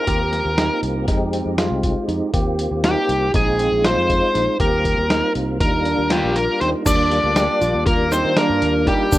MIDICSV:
0, 0, Header, 1, 7, 480
1, 0, Start_track
1, 0, Key_signature, -3, "major"
1, 0, Tempo, 502934
1, 73, Time_signature, 9, 3, 24, 8
1, 8764, End_track
2, 0, Start_track
2, 0, Title_t, "Lead electric guitar"
2, 0, Program_c, 0, 29
2, 83, Note_on_c, 0, 70, 84
2, 759, Note_off_c, 0, 70, 0
2, 2718, Note_on_c, 0, 67, 63
2, 3160, Note_off_c, 0, 67, 0
2, 3202, Note_on_c, 0, 68, 82
2, 3676, Note_on_c, 0, 72, 85
2, 3690, Note_off_c, 0, 68, 0
2, 4355, Note_off_c, 0, 72, 0
2, 4396, Note_on_c, 0, 70, 78
2, 5075, Note_off_c, 0, 70, 0
2, 5353, Note_on_c, 0, 70, 100
2, 5838, Note_on_c, 0, 67, 74
2, 6059, Note_off_c, 0, 70, 0
2, 6070, Note_on_c, 0, 70, 76
2, 6081, Note_off_c, 0, 67, 0
2, 6307, Note_off_c, 0, 70, 0
2, 6311, Note_on_c, 0, 72, 71
2, 6375, Note_off_c, 0, 72, 0
2, 6556, Note_on_c, 0, 74, 110
2, 7474, Note_off_c, 0, 74, 0
2, 7510, Note_on_c, 0, 70, 87
2, 7750, Note_on_c, 0, 72, 86
2, 7757, Note_off_c, 0, 70, 0
2, 7973, Note_off_c, 0, 72, 0
2, 7996, Note_on_c, 0, 70, 82
2, 8472, Note_off_c, 0, 70, 0
2, 8475, Note_on_c, 0, 67, 76
2, 8764, Note_off_c, 0, 67, 0
2, 8764, End_track
3, 0, Start_track
3, 0, Title_t, "Tine electric piano"
3, 0, Program_c, 1, 4
3, 68, Note_on_c, 1, 67, 76
3, 493, Note_off_c, 1, 67, 0
3, 546, Note_on_c, 1, 63, 73
3, 971, Note_off_c, 1, 63, 0
3, 1028, Note_on_c, 1, 63, 78
3, 1241, Note_off_c, 1, 63, 0
3, 1270, Note_on_c, 1, 60, 65
3, 1482, Note_off_c, 1, 60, 0
3, 1510, Note_on_c, 1, 65, 82
3, 1934, Note_off_c, 1, 65, 0
3, 1990, Note_on_c, 1, 63, 57
3, 2202, Note_off_c, 1, 63, 0
3, 2231, Note_on_c, 1, 67, 81
3, 2654, Note_off_c, 1, 67, 0
3, 2711, Note_on_c, 1, 63, 71
3, 3134, Note_off_c, 1, 63, 0
3, 3189, Note_on_c, 1, 63, 71
3, 3401, Note_off_c, 1, 63, 0
3, 3430, Note_on_c, 1, 60, 72
3, 3642, Note_off_c, 1, 60, 0
3, 3669, Note_on_c, 1, 65, 83
3, 4092, Note_off_c, 1, 65, 0
3, 4146, Note_on_c, 1, 63, 56
3, 4359, Note_off_c, 1, 63, 0
3, 4388, Note_on_c, 1, 67, 87
3, 4812, Note_off_c, 1, 67, 0
3, 4872, Note_on_c, 1, 63, 69
3, 5294, Note_off_c, 1, 63, 0
3, 5353, Note_on_c, 1, 63, 65
3, 5563, Note_off_c, 1, 63, 0
3, 5590, Note_on_c, 1, 62, 74
3, 5801, Note_off_c, 1, 62, 0
3, 5830, Note_on_c, 1, 65, 70
3, 6253, Note_off_c, 1, 65, 0
3, 6312, Note_on_c, 1, 63, 56
3, 6522, Note_off_c, 1, 63, 0
3, 6544, Note_on_c, 1, 62, 81
3, 6969, Note_off_c, 1, 62, 0
3, 7029, Note_on_c, 1, 67, 76
3, 7241, Note_off_c, 1, 67, 0
3, 7265, Note_on_c, 1, 65, 66
3, 7690, Note_off_c, 1, 65, 0
3, 7748, Note_on_c, 1, 63, 71
3, 7960, Note_off_c, 1, 63, 0
3, 7984, Note_on_c, 1, 62, 83
3, 8410, Note_off_c, 1, 62, 0
3, 8462, Note_on_c, 1, 63, 70
3, 8677, Note_off_c, 1, 63, 0
3, 8705, Note_on_c, 1, 62, 89
3, 8764, Note_off_c, 1, 62, 0
3, 8764, End_track
4, 0, Start_track
4, 0, Title_t, "Tonewheel organ"
4, 0, Program_c, 2, 16
4, 73, Note_on_c, 2, 65, 47
4, 74, Note_on_c, 2, 58, 52
4, 74, Note_on_c, 2, 67, 57
4, 75, Note_on_c, 2, 60, 47
4, 1012, Note_off_c, 2, 65, 0
4, 1013, Note_off_c, 2, 58, 0
4, 1013, Note_off_c, 2, 67, 0
4, 1014, Note_off_c, 2, 60, 0
4, 1029, Note_on_c, 2, 56, 63
4, 1031, Note_on_c, 2, 60, 62
4, 1033, Note_on_c, 2, 63, 59
4, 1033, Note_on_c, 2, 67, 75
4, 2205, Note_off_c, 2, 56, 0
4, 2206, Note_off_c, 2, 60, 0
4, 2207, Note_off_c, 2, 63, 0
4, 2207, Note_off_c, 2, 67, 0
4, 2225, Note_on_c, 2, 58, 57
4, 2226, Note_on_c, 2, 60, 58
4, 2226, Note_on_c, 2, 65, 59
4, 2230, Note_on_c, 2, 67, 65
4, 3168, Note_off_c, 2, 58, 0
4, 3169, Note_off_c, 2, 60, 0
4, 3169, Note_off_c, 2, 65, 0
4, 3171, Note_off_c, 2, 67, 0
4, 3187, Note_on_c, 2, 60, 53
4, 3188, Note_on_c, 2, 63, 50
4, 3188, Note_on_c, 2, 65, 66
4, 3189, Note_on_c, 2, 56, 60
4, 4364, Note_off_c, 2, 60, 0
4, 4364, Note_off_c, 2, 65, 0
4, 4365, Note_off_c, 2, 56, 0
4, 4365, Note_off_c, 2, 63, 0
4, 4382, Note_on_c, 2, 55, 56
4, 4384, Note_on_c, 2, 58, 49
4, 4384, Note_on_c, 2, 60, 52
4, 4385, Note_on_c, 2, 65, 58
4, 5326, Note_off_c, 2, 55, 0
4, 5327, Note_off_c, 2, 58, 0
4, 5327, Note_off_c, 2, 60, 0
4, 5328, Note_off_c, 2, 65, 0
4, 5350, Note_on_c, 2, 58, 50
4, 5350, Note_on_c, 2, 62, 47
4, 5351, Note_on_c, 2, 55, 54
4, 5353, Note_on_c, 2, 65, 61
4, 6525, Note_off_c, 2, 62, 0
4, 6526, Note_off_c, 2, 55, 0
4, 6526, Note_off_c, 2, 58, 0
4, 6527, Note_off_c, 2, 65, 0
4, 6551, Note_on_c, 2, 55, 51
4, 6552, Note_on_c, 2, 62, 51
4, 6553, Note_on_c, 2, 58, 48
4, 6555, Note_on_c, 2, 65, 56
4, 8764, Note_off_c, 2, 55, 0
4, 8764, Note_off_c, 2, 58, 0
4, 8764, Note_off_c, 2, 62, 0
4, 8764, Note_off_c, 2, 65, 0
4, 8764, End_track
5, 0, Start_track
5, 0, Title_t, "Flugelhorn"
5, 0, Program_c, 3, 56
5, 5837, Note_on_c, 3, 55, 67
5, 6057, Note_off_c, 3, 55, 0
5, 6075, Note_on_c, 3, 58, 68
5, 6296, Note_off_c, 3, 58, 0
5, 6317, Note_on_c, 3, 60, 69
5, 6423, Note_off_c, 3, 60, 0
5, 6559, Note_on_c, 3, 62, 82
5, 7476, Note_off_c, 3, 62, 0
5, 7515, Note_on_c, 3, 58, 73
5, 7735, Note_off_c, 3, 58, 0
5, 7751, Note_on_c, 3, 60, 72
5, 7973, Note_off_c, 3, 60, 0
5, 7991, Note_on_c, 3, 58, 71
5, 8436, Note_off_c, 3, 58, 0
5, 8481, Note_on_c, 3, 55, 69
5, 8764, Note_off_c, 3, 55, 0
5, 8764, End_track
6, 0, Start_track
6, 0, Title_t, "Fretless electric bass"
6, 0, Program_c, 4, 35
6, 72, Note_on_c, 4, 39, 88
6, 399, Note_off_c, 4, 39, 0
6, 430, Note_on_c, 4, 39, 77
6, 649, Note_off_c, 4, 39, 0
6, 787, Note_on_c, 4, 36, 76
6, 1007, Note_off_c, 4, 36, 0
6, 1032, Note_on_c, 4, 41, 79
6, 1359, Note_off_c, 4, 41, 0
6, 1388, Note_on_c, 4, 41, 69
6, 1607, Note_off_c, 4, 41, 0
6, 1626, Note_on_c, 4, 36, 68
6, 1847, Note_off_c, 4, 36, 0
6, 1986, Note_on_c, 4, 41, 67
6, 2097, Note_off_c, 4, 41, 0
6, 2230, Note_on_c, 4, 39, 93
6, 2558, Note_off_c, 4, 39, 0
6, 2587, Note_on_c, 4, 39, 82
6, 2807, Note_off_c, 4, 39, 0
6, 2946, Note_on_c, 4, 36, 75
6, 3166, Note_off_c, 4, 36, 0
6, 3190, Note_on_c, 4, 34, 83
6, 3517, Note_off_c, 4, 34, 0
6, 3550, Note_on_c, 4, 34, 77
6, 3768, Note_off_c, 4, 34, 0
6, 3793, Note_on_c, 4, 41, 81
6, 4010, Note_off_c, 4, 41, 0
6, 4152, Note_on_c, 4, 34, 77
6, 4260, Note_off_c, 4, 34, 0
6, 4389, Note_on_c, 4, 39, 92
6, 4717, Note_off_c, 4, 39, 0
6, 4753, Note_on_c, 4, 39, 86
6, 4970, Note_off_c, 4, 39, 0
6, 5109, Note_on_c, 4, 36, 78
6, 5328, Note_off_c, 4, 36, 0
6, 5349, Note_on_c, 4, 39, 89
6, 5677, Note_off_c, 4, 39, 0
6, 5711, Note_on_c, 4, 39, 75
6, 5929, Note_off_c, 4, 39, 0
6, 5952, Note_on_c, 4, 34, 75
6, 6169, Note_off_c, 4, 34, 0
6, 6311, Note_on_c, 4, 39, 65
6, 6419, Note_off_c, 4, 39, 0
6, 6549, Note_on_c, 4, 39, 88
6, 6877, Note_off_c, 4, 39, 0
6, 6907, Note_on_c, 4, 38, 76
6, 7126, Note_off_c, 4, 38, 0
6, 7267, Note_on_c, 4, 34, 95
6, 7377, Note_off_c, 4, 34, 0
6, 7387, Note_on_c, 4, 39, 80
6, 7830, Note_off_c, 4, 39, 0
6, 7868, Note_on_c, 4, 51, 72
6, 8087, Note_off_c, 4, 51, 0
6, 8107, Note_on_c, 4, 43, 78
6, 8217, Note_off_c, 4, 43, 0
6, 8226, Note_on_c, 4, 39, 73
6, 8446, Note_off_c, 4, 39, 0
6, 8707, Note_on_c, 4, 39, 78
6, 8764, Note_off_c, 4, 39, 0
6, 8764, End_track
7, 0, Start_track
7, 0, Title_t, "Drums"
7, 69, Note_on_c, 9, 42, 63
7, 71, Note_on_c, 9, 36, 85
7, 165, Note_off_c, 9, 42, 0
7, 166, Note_off_c, 9, 36, 0
7, 313, Note_on_c, 9, 38, 27
7, 313, Note_on_c, 9, 42, 52
7, 408, Note_off_c, 9, 38, 0
7, 408, Note_off_c, 9, 42, 0
7, 552, Note_on_c, 9, 38, 99
7, 552, Note_on_c, 9, 42, 64
7, 647, Note_off_c, 9, 38, 0
7, 647, Note_off_c, 9, 42, 0
7, 792, Note_on_c, 9, 42, 47
7, 888, Note_off_c, 9, 42, 0
7, 1029, Note_on_c, 9, 38, 31
7, 1029, Note_on_c, 9, 42, 76
7, 1031, Note_on_c, 9, 36, 100
7, 1125, Note_off_c, 9, 38, 0
7, 1125, Note_off_c, 9, 42, 0
7, 1126, Note_off_c, 9, 36, 0
7, 1271, Note_on_c, 9, 42, 56
7, 1366, Note_off_c, 9, 42, 0
7, 1509, Note_on_c, 9, 38, 96
7, 1509, Note_on_c, 9, 42, 70
7, 1604, Note_off_c, 9, 38, 0
7, 1604, Note_off_c, 9, 42, 0
7, 1750, Note_on_c, 9, 36, 59
7, 1750, Note_on_c, 9, 42, 57
7, 1846, Note_off_c, 9, 36, 0
7, 1846, Note_off_c, 9, 42, 0
7, 1992, Note_on_c, 9, 42, 53
7, 2087, Note_off_c, 9, 42, 0
7, 2230, Note_on_c, 9, 36, 100
7, 2230, Note_on_c, 9, 42, 67
7, 2326, Note_off_c, 9, 36, 0
7, 2326, Note_off_c, 9, 42, 0
7, 2471, Note_on_c, 9, 42, 60
7, 2566, Note_off_c, 9, 42, 0
7, 2709, Note_on_c, 9, 38, 101
7, 2709, Note_on_c, 9, 42, 78
7, 2804, Note_off_c, 9, 38, 0
7, 2804, Note_off_c, 9, 42, 0
7, 2951, Note_on_c, 9, 42, 56
7, 3046, Note_off_c, 9, 42, 0
7, 3188, Note_on_c, 9, 42, 70
7, 3189, Note_on_c, 9, 36, 99
7, 3283, Note_off_c, 9, 42, 0
7, 3284, Note_off_c, 9, 36, 0
7, 3429, Note_on_c, 9, 42, 55
7, 3524, Note_off_c, 9, 42, 0
7, 3669, Note_on_c, 9, 38, 100
7, 3669, Note_on_c, 9, 42, 78
7, 3765, Note_off_c, 9, 38, 0
7, 3765, Note_off_c, 9, 42, 0
7, 3910, Note_on_c, 9, 36, 67
7, 3912, Note_on_c, 9, 42, 55
7, 4005, Note_off_c, 9, 36, 0
7, 4007, Note_off_c, 9, 42, 0
7, 4153, Note_on_c, 9, 38, 26
7, 4153, Note_on_c, 9, 42, 51
7, 4248, Note_off_c, 9, 38, 0
7, 4248, Note_off_c, 9, 42, 0
7, 4388, Note_on_c, 9, 42, 72
7, 4389, Note_on_c, 9, 36, 88
7, 4484, Note_off_c, 9, 42, 0
7, 4485, Note_off_c, 9, 36, 0
7, 4630, Note_on_c, 9, 36, 65
7, 4630, Note_on_c, 9, 42, 52
7, 4726, Note_off_c, 9, 36, 0
7, 4726, Note_off_c, 9, 42, 0
7, 4869, Note_on_c, 9, 38, 102
7, 4869, Note_on_c, 9, 42, 68
7, 4965, Note_off_c, 9, 38, 0
7, 4965, Note_off_c, 9, 42, 0
7, 5109, Note_on_c, 9, 42, 48
7, 5204, Note_off_c, 9, 42, 0
7, 5349, Note_on_c, 9, 36, 95
7, 5349, Note_on_c, 9, 42, 69
7, 5444, Note_off_c, 9, 36, 0
7, 5445, Note_off_c, 9, 42, 0
7, 5586, Note_on_c, 9, 42, 58
7, 5682, Note_off_c, 9, 42, 0
7, 5825, Note_on_c, 9, 38, 93
7, 5825, Note_on_c, 9, 42, 76
7, 5920, Note_off_c, 9, 38, 0
7, 5920, Note_off_c, 9, 42, 0
7, 6068, Note_on_c, 9, 42, 60
7, 6164, Note_off_c, 9, 42, 0
7, 6311, Note_on_c, 9, 38, 30
7, 6311, Note_on_c, 9, 42, 51
7, 6406, Note_off_c, 9, 38, 0
7, 6406, Note_off_c, 9, 42, 0
7, 6547, Note_on_c, 9, 36, 103
7, 6547, Note_on_c, 9, 42, 76
7, 6547, Note_on_c, 9, 49, 90
7, 6551, Note_on_c, 9, 82, 56
7, 6643, Note_off_c, 9, 36, 0
7, 6643, Note_off_c, 9, 42, 0
7, 6643, Note_off_c, 9, 49, 0
7, 6646, Note_off_c, 9, 82, 0
7, 6791, Note_on_c, 9, 38, 31
7, 6791, Note_on_c, 9, 42, 58
7, 6886, Note_off_c, 9, 38, 0
7, 6886, Note_off_c, 9, 42, 0
7, 7024, Note_on_c, 9, 38, 95
7, 7024, Note_on_c, 9, 42, 76
7, 7030, Note_on_c, 9, 82, 19
7, 7120, Note_off_c, 9, 38, 0
7, 7120, Note_off_c, 9, 42, 0
7, 7125, Note_off_c, 9, 82, 0
7, 7268, Note_on_c, 9, 42, 52
7, 7271, Note_on_c, 9, 82, 17
7, 7363, Note_off_c, 9, 42, 0
7, 7366, Note_off_c, 9, 82, 0
7, 7505, Note_on_c, 9, 36, 94
7, 7506, Note_on_c, 9, 42, 76
7, 7601, Note_off_c, 9, 36, 0
7, 7601, Note_off_c, 9, 42, 0
7, 7748, Note_on_c, 9, 38, 33
7, 7748, Note_on_c, 9, 42, 52
7, 7751, Note_on_c, 9, 82, 50
7, 7844, Note_off_c, 9, 38, 0
7, 7844, Note_off_c, 9, 42, 0
7, 7847, Note_off_c, 9, 82, 0
7, 7984, Note_on_c, 9, 38, 92
7, 7984, Note_on_c, 9, 42, 75
7, 8080, Note_off_c, 9, 38, 0
7, 8080, Note_off_c, 9, 42, 0
7, 8226, Note_on_c, 9, 42, 54
7, 8322, Note_off_c, 9, 42, 0
7, 8465, Note_on_c, 9, 42, 56
7, 8466, Note_on_c, 9, 36, 70
7, 8561, Note_off_c, 9, 36, 0
7, 8561, Note_off_c, 9, 42, 0
7, 8707, Note_on_c, 9, 82, 60
7, 8708, Note_on_c, 9, 36, 100
7, 8709, Note_on_c, 9, 42, 71
7, 8764, Note_off_c, 9, 36, 0
7, 8764, Note_off_c, 9, 42, 0
7, 8764, Note_off_c, 9, 82, 0
7, 8764, End_track
0, 0, End_of_file